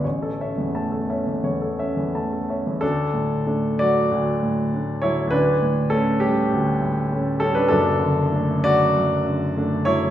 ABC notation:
X:1
M:4/4
L:1/16
Q:1/4=98
K:D
V:1 name="Grand piano"
c A [ce] E,, a A [ce] E,, c A [ce] E,, a A [ce] E,, | [DA]6 [Fd]8 [Ec]2 | [DB]4 [CA]2 [CG]8 [CA] [DB] | [DA]6 [Fd]8 [Ec]2 |]
V:2 name="Grand piano" clef=bass
A,,,2 C2 A,2 C2 E,,2 C2 A,2 C2 | D,,2 A,,2 [A,D]2 F,2 D,,2 A,,2 [A,D]2 F,2 | D,,2 A,,2 A,2 G,2 D,,2 A,,2 [A,C]2 G,2 | [F,,,F,,]2 D,2 [A,D]2 F,2 F,,2 D,2 [A,D]2 F,2 |]